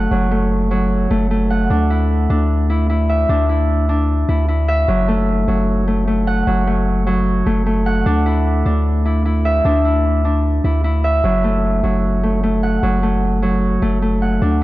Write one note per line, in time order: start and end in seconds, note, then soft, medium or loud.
0.00 0.10 F#3 medium
0.00 0.31 A3 medium
0.00 0.33 D4 medium
0.00 0.74 E4 medium
0.00 1.50 F#5 medium
0.11 1.07 F#1 loud
0.11 0.70 F#3 medium
0.31 1.10 A3 medium
0.71 1.75 F#3 medium
1.11 1.68 F#1 loud
1.11 1.30 A3 medium
1.31 4.63 A3 medium
1.50 3.11 F#5 loud
1.70 2.28 D2 loud
1.70 2.29 D4 medium
1.90 2.69 E4 medium
2.30 3.25 D2 loud
2.30 3.29 D4 medium
2.70 2.89 E4 medium
2.90 3.49 E4 medium
3.09 4.68 E5 medium
3.29 4.25 D2 loud
3.29 3.89 D4 loud
3.49 4.28 E4 medium
3.89 6.69 D4 medium
4.29 4.86 D2 loud
4.29 4.48 E4 medium
4.48 7.10 E4 medium
4.68 6.41 E5 medium
4.88 5.45 F#1 loud
4.88 5.47 F#3 medium
5.08 5.87 A3 medium
5.48 6.43 F#1 loud
5.48 6.46 F#3 medium
5.88 6.07 A3 medium
6.07 6.67 A3 medium
6.27 7.86 F#5 medium
6.47 7.43 F#1 loud
6.47 7.05 F#3 medium
6.67 7.46 A3 medium
7.07 8.11 F#3 medium
7.46 8.04 F#1 loud
7.46 7.66 A3 medium
7.66 10.99 A3 medium
7.86 9.47 F#5 medium
8.06 8.63 D2 loud
8.06 8.65 D4 medium
8.26 9.05 E4 medium
8.66 9.61 D2 loud
8.66 9.65 D4 medium
9.05 9.25 E4 medium
9.25 9.84 E4 medium
9.45 11.04 E5 medium
9.65 10.60 D2 loud
9.65 10.24 D4 loud
9.85 10.64 E4 medium
10.25 13.05 D4 medium
10.64 11.22 D2 loud
10.64 10.84 E4 medium
10.84 13.45 E4 medium
11.04 12.76 E5 medium
11.24 11.81 F#1 loud
11.24 11.82 F#3 medium
11.44 12.23 A3 medium
11.83 12.79 F#1 loud
11.83 12.82 F#3 medium
12.23 12.43 A3 medium
12.43 13.02 A3 medium
12.63 14.21 F#5 medium
12.83 13.78 F#1 loud
12.83 13.41 F#3 medium
13.03 13.82 A3 medium
13.42 14.47 F#3 medium
13.82 14.39 F#1 loud
13.82 14.02 A3 medium
14.02 14.63 A3 medium
14.22 14.63 F#5 medium
14.42 14.63 D2 loud
14.42 14.63 D4 medium